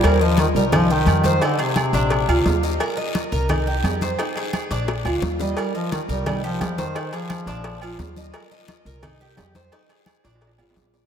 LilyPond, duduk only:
\new Staff \with { instrumentName = "Duduk" } { \clef bass \time 4/4 \key ees \major \tempo 4 = 173 g8 f8 ees8 g8 f8 ees4. | d8 c2. r8 | r1 | r2. r8 g8~ |
g8 f8 ees8 g8 g8 f4 ees8~ | ees8 f2. r8 | r1 | r1 | }